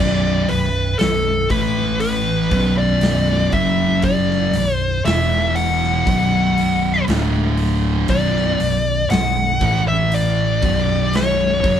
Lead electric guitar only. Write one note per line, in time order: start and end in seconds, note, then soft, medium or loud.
0.00 0.52 D5 medium
0.49 0.97 B4 medium
0.99 1.47 A4 medium
1.51 1.98 B4 medium
2.01 2.73 B4 medium
2.78 3.53 D5 loud
3.53 4.01 E5 medium
4.04 4.72 D5 loud
4.72 5.02 C5 loud
5.05 5.58 E5 medium
5.55 7.04 F#5 loud
8.10 9.07 D5 loud
9.11 9.83 F#5 loud
9.88 10.14 E5 medium
10.14 11.16 D5 loud
11.17 11.80 C#5 loud